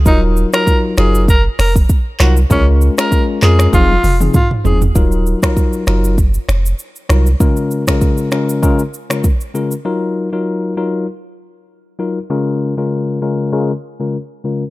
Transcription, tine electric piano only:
X:1
M:4/4
L:1/16
Q:"Swing 16ths" 1/4=98
K:Ebdor
V:1 name="Tine electric piano"
[G,EFB]3 [G,EFB]3 [G,EFB]2 z6 [G,EFB] z | [A,DFB]3 [A,DFB]3 [A,DFB]2 [F,CEA] z2 [F,CEA] z2 [F,CEA] z | [G,EFB]3 [G,EFB]3 [G,EFB]2 z6 [G,EFB] z | [D,A,DFB]3 [D,A,DFB]3 [D,A,DFB]2 [D,A,DFB] z2 [D,A,DFB] z2 [D,A,DFB] z |
[G,EFB]3 [G,EFB]3 [G,EFB]2 z6 [G,EFB] z | [D,A,DFB]3 [D,A,DFB]3 [D,A,DFB]2 [D,A,DFB] z2 [D,A,DFB] z2 [D,A,DFB] z |]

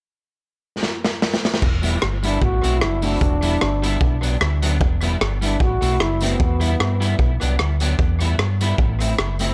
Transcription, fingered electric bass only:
X:1
M:4/4
L:1/8
Q:"Swing" 1/4=151
K:Em
V:1 name="Fingered electric bass" clef=bass
z8 | E,,,2 G,,,2 A,,, B,,, F,,,2 | E,,,2 G,,,2 B,,,2 D,,2 | E,,,2 G,,,2 A,,, B,,, F,,,2 |
E,,2 G,,2 B,,, C,, D,,2 | E,,2 G,,2 A,,,2 F,,,2 |]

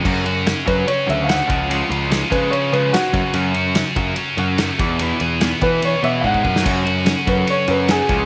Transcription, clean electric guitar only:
X:1
M:4/4
L:1/8
Q:1/4=145
K:F#m
V:1 name="Clean electric guitar" clef=bass
[F,,C,F,] [F,,C,] [F,,C,] [F,,C,F,] [F,,C,] [F,,C,F,] [F,,C,] [C,^E,G,] | [C,^E,G,] [C,E,] [C,E,] [C,E,G,] [C,E,] [C,E,G,] [C,E,] [F,,C,F,] | [F,,C,F,] [F,,C,] [F,,C,] [F,,C,F,] [F,,C,] [F,,C,F,] [F,,C,] [E,,B,,E,] | [E,,B,,E,] [E,,B,,] [E,,B,,] [E,,B,,E,] [E,,B,,] [E,,B,,E,] [E,,B,,] [E,,B,,] |
[F,,C,F,] [F,,C,] [F,,C,] [F,,C,F,] [F,,C,] [F,,C,F,] [F,,C,] [C,^E,G,] |]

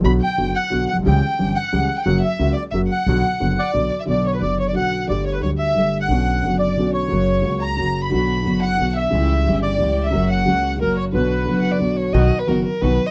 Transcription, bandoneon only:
X:1
M:3/4
L:1/16
Q:1/4=178
K:Bm
V:1 name="Bandoneon"
b2 g4 f4 f2 | g6 f4- f g | f2 e4 d2 e2 f2- | f6 d4- d e |
d2 c B d2 c d f4 | d2 c B c2 e4- e f- | f6 d4 c2- | c6 ^a4- a b- |
b6 f4 e2- | e6 d4- d e- | e2 f6 ^A2 c2 | B8 z4 |
[K:B] z12 |]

